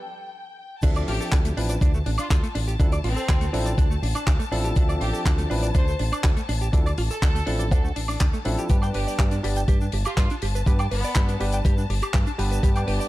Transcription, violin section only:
1.08 G4
2.19 F4
2.31 F4
3.05 C4
5.01 G4
5.75 C5
7.11 A4
8.94 G4
10.05 F4
10.16 F4
10.91 B3
12.87 G4

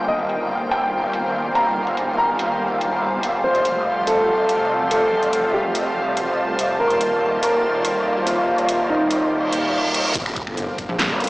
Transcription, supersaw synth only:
Already playing: G3 A#3
0.09 D#3 F4
3.44 C3 A3
6.80 D#3 G3 A#3
10.15 D3 G3 A#3 G4

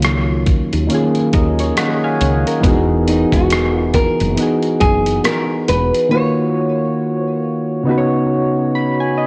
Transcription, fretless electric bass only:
Already playing: C#2
0.73 D#2
1.34 D#2
2.21 C#2
2.64 E1
3.33 E1
4.21 F#1
4.82 F#1
5.69 E1

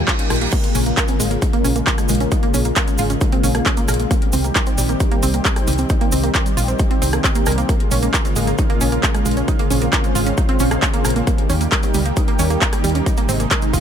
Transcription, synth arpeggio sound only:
0.08 F4
0.19 C#4
0.30 F4
0.42 A#3
0.53 A#3
0.75 C#4
0.86 A#3
0.97 A#4
1.09 C4
1.20 G#3
1.31 A#3
1.42 D#4
1.53 A#3
1.65 C#4
1.76 A#3
1.87 A#4
1.98 G#3
2.09 G#3
2.21 C#4
2.32 D#4
2.43 A#3
2.54 C#4
2.65 A#3
2.77 A#4
2.88 G#3
2.99 F4
3.10 C#4
3.21 D#4
3.33 C4
3.44 C#4
3.55 A#3
3.66 C#4
3.77 A#3
3.89 A#4
4.00 A#3
4.11 A#3
4.33 C4
4.44 A#3
4.56 A#4
4.67 C4
4.78 G3
4.89 A#3
5.00 D#4
5.12 A#3
5.23 C4
5.34 A#3
5.45 A#4
5.56 G3
5.68 G3
5.79 C4
5.90 D#4
6.01 A#3
6.12 C4
6.24 A#3
6.35 A#4
6.46 G3
6.57 F4
6.68 C4
6.79 D#4
6.91 C4
7.02 C4
7.13 A#3
7.24 C4
7.35 A#3
7.47 A#4
7.58 A#3
7.69 A#3
7.92 C#4
8.03 A#3
8.14 A#4
8.25 C4
8.36 G#3
8.47 A#3
8.59 D#4
8.70 A#3
8.81 C#4
8.92 A#3
9.03 A#4
9.15 G#3
9.26 G#3
9.37 C#4
9.48 D#4
9.59 A#3
9.71 C#4
9.82 A#3
9.93 A#4
10.04 G#3
10.15 F4
10.27 C#4
10.38 D#4
10.49 C4
10.60 C#4
10.71 A#3
10.83 C#4
10.94 A#3
11.05 A#4
11.16 A#3
11.27 A#3
11.50 C#4
11.61 A#3
11.72 A#4
11.83 C4
11.95 G3
12.06 A#3
12.17 D#4
12.28 A#3
12.39 C#4
12.50 A#3
12.62 A#4
12.73 G3
12.84 G3
12.95 C#4
13.06 D#4
13.18 A#3
13.29 C4
13.40 A#3
13.51 A#4
13.62 G#3
13.73 F4

